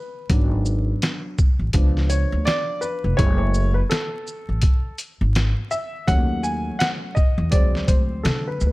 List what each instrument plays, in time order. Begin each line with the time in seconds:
Already playing: upright piano B4
0.29 upright bass G#1, upright piano F#3 B3 D4, kick, closed hi-hat
0.65 shaker
1.02 snare, closed hi-hat
1.38 kick, shaker
1.59 upright bass A1
1.73 upright bass C#2, upright piano F3 B3 D4, kick, closed hi-hat
1.97 snare
2.10 upright piano C#5, closed hi-hat, shaker
2.32 upright bass D2
2.45 upright piano D5, snare, closed hi-hat
2.81 upright piano B4, shaker
3.04 upright bass F1
3.17 upright bass F#1, upright piano G#3 A3 E4 C#5, kick, closed hi-hat
3.38 upright piano C#5
3.54 shaker
3.74 upright piano B4
3.90 upright piano A4, snare, closed hi-hat
4.27 shaker
4.49 upright bass A1
4.62 kick, closed hi-hat
4.98 closed hi-hat, shaker
5.21 upright bass G#1
5.35 snare, closed hi-hat
5.71 upright piano E5, shaker
6.07 upright bass D#2, upright piano F#3 A3 C#4 F#5, kick, closed hi-hat
6.43 upright piano G#5, shaker
6.79 upright piano F#5, snare, closed hi-hat
7.15 upright piano D#5, kick, shaker
7.38 upright bass E2
7.51 upright bass D2, upright piano F#3 G#3 C4 D5, kick, closed hi-hat
7.75 snare
7.87 upright bass D2, upright piano C5, kick, closed hi-hat, shaker
8.23 upright bass D3, upright piano A4, snare, closed hi-hat
8.48 upright piano B4
8.60 upright bass D2, shaker
8.67 upright piano B4